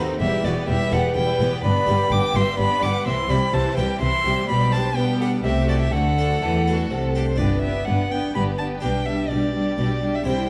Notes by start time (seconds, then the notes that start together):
Already playing: D#2 A3 C4 D#4 F#4
0.20 E1 E2 G3 E4 G4 E5
0.44 E1 E2 B3 F#4 G4 D5
0.68 E1 E2 G3 E4 G4 E5
0.92 E1 E2 B3 G4 A4 F#5
1.16 E1 E2 G3 E4 B4 G5
1.39 E1 E2 B3 G4
1.63 G1 G2 B3 D4 D5 B5
1.87 G1 G2 G3 B3 G4
2.11 G1 G2 B3 D4 G5 D6
2.34 G1 G2 G3 B3 G4 E5 C6
2.57 G1 G2 B3 D4 D5 B5
2.82 G1 G2 G3 B3 G4 F#5 D6
3.05 C2 C3 E3 E4 E5 C6
3.29 C2 C3 G3 E4 G4 D5 B5
3.52 C2 C3 E3 E4 C5 A5
3.77 C2 C3 G3 E4 G4 B4 G5
4.00 C2 C3 E3 E4 E5 C6
4.25 C2 C3 G3 E4 G4
4.48 B1 B2 G3 G4 D5 B5
4.72 D4 G4 C5 A5
4.95 B2 G3 B3 G4 B4 G5
5.20 D4 G4 A4 F#5
5.43 C2 C3 A3 G4 E5
5.67 E4 F#4 A4 D5
5.79 G4 E5
5.92 D2 D3 A3 F#4 A4 F#5
6.18 D4 A4
6.42 E2 E3 A4
6.55 G4
6.67 D4 F#4 A4
6.90 C2 C3 A4
7.15 D4 G4 A4
7.28 C5
7.36 G1 G2 B3 D4 G4 B4 D5
7.61 B3 D4 G4 E5
7.85 G1 G2 B3 D4 G4 F#5
8.10 B3 D4 G4 G5
8.34 G1 G2 B3 D4 G4 B5
8.58 B3 D4 G4 A5
8.80 B1 B2 G3 D4 G4 G5
9.06 G3 D4 G4 E5
9.29 B1 B2 G3 D4 G4 D5
9.54 G3 D4 G4
9.78 B1 B2 G3 D4 G4
10.01 G3 D4 G4
10.15 E5
10.24 C2 C3 G3 E4 C5 G5
10.28 C5